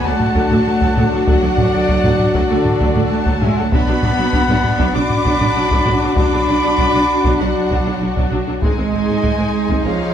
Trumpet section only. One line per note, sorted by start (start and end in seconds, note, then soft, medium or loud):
0.05 1.28 F#5 medium
1.28 2.34 D5 loud
2.51 3.10 A4 medium
3.11 3.41 F#5 medium
3.42 3.57 E5 medium
3.58 3.72 F#5 medium
3.73 4.93 F#5 medium
4.95 6.15 B5 loud
6.17 7.37 B5 loud
7.40 8.32 D5 medium
8.63 9.81 D#5 medium
9.85 10.14 C#5 medium